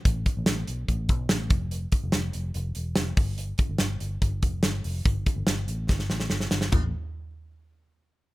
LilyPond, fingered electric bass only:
\new Staff \with { instrumentName = "Fingered electric bass" } { \clef bass \time 4/4 \key c \major \tempo 4 = 144 a,,8 r16 a,,16 a,,8 b,,8 a,,8 b,,8 a,,8 f,,8~ | f,,8 r16 f,,16 f,,8 f,,8 f,,8 e,,8 f,,8 g,,8~ | g,,8 r16 g,,16 g,,8 g,,8 g,,8 f,,8 g,,8 f,,8 | g,,8 r16 g,,16 g,,8 a,,8 g,,8 a,,8 g,,8 g,,8 |
a,,8 r2. r8 | }